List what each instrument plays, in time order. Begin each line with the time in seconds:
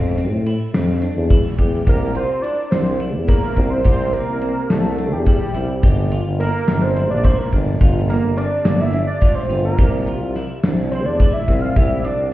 Already playing: tuba F2, clean electric guitar C4
0.17 clean electric guitar C4, snare, ride
0.31 tuba A2
0.46 clean electric guitar E4, ride
0.74 tuba F2, clean electric guitar C4, snare, ride
1.02 clean electric guitar D4, ride
1.16 tuba E2
1.30 clean electric guitar E4, kick, ride
1.58 tuba E2, clean electric guitar G4, kick, ride
1.87 tuba C2, clean electric guitar G4, analog synth lead A#4, kick, ride
2.15 clean electric guitar F4, analog synth lead C5, ride
2.42 clean electric guitar E4, analog synth lead D5, ride
2.71 tuba C2, clean electric guitar D4, analog synth lead C5, snare, ride
3.00 clean electric guitar E4, ride
3.16 tuba E2
3.28 clean electric guitar E4, analog synth lead A#4, kick, ride
3.56 tuba C2, clean electric guitar C4, kick, ride
3.70 analog synth lead C5
3.84 tuba C2, clean electric guitar G4, analog synth lead C5, kick, ride
4.13 clean electric guitar C4, analog synth lead A#4, ride
4.29 tuba C2
4.42 clean electric guitar C4, ride
4.70 tuba C2, clean electric guitar A#3, analog synth lead A4, snare, ride
4.98 clean electric guitar D4, ride
5.13 tuba E2, analog synth lead G4
5.26 clean electric guitar E4, analog synth lead G4, kick, ride
5.54 tuba C2, clean electric guitar E4, snare, ride
5.83 tuba G1, clean electric guitar G4, kick, ride
6.12 clean electric guitar F4, ride
6.26 tuba G1
6.40 clean electric guitar E4, analog synth lead A#4, ride
6.68 tuba G1, clean electric guitar D4, snare, ride
6.81 analog synth lead C5
6.96 clean electric guitar E4, ride
7.10 tuba A#1, analog synth lead D5
7.24 clean electric guitar E4, analog synth lead C5, kick, ride
7.38 analog synth lead A#4
7.52 tuba G1, clean electric guitar D4, kick, ride
7.81 tuba G1, clean electric guitar F4, kick, ride
8.08 clean electric guitar A#3, analog synth lead A#4, snare, ride
8.24 tuba G1
8.36 clean electric guitar C4, analog synth lead D5, ride
8.64 tuba G1, clean electric guitar A#3, snare, ride
8.81 analog synth lead E5
8.92 clean electric guitar D4, ride
9.07 analog synth lead D5
9.21 clean electric guitar F4, kick, ride
9.35 analog synth lead C5
9.49 tuba G1, clean electric guitar F4, ride
9.64 analog synth lead A#4
9.78 tuba C2, clean electric guitar G4, kick, ride
10.07 clean electric guitar F4, ride
10.21 tuba C2
10.36 clean electric guitar E4, snare, ride
10.64 tuba C2, clean electric guitar D4, snare, ride
10.91 clean electric guitar E4, analog synth lead C5, ride
11.06 tuba E2, analog synth lead D5
11.19 clean electric guitar E4, kick, ride
11.33 analog synth lead E5
11.48 tuba C2, clean electric guitar C4, kick, ride
11.61 analog synth lead F5
11.76 tuba C2, clean electric guitar G4, analog synth lead E5, kick, ride
12.04 clean electric guitar C4, analog synth lead D5, ride
12.18 tuba C2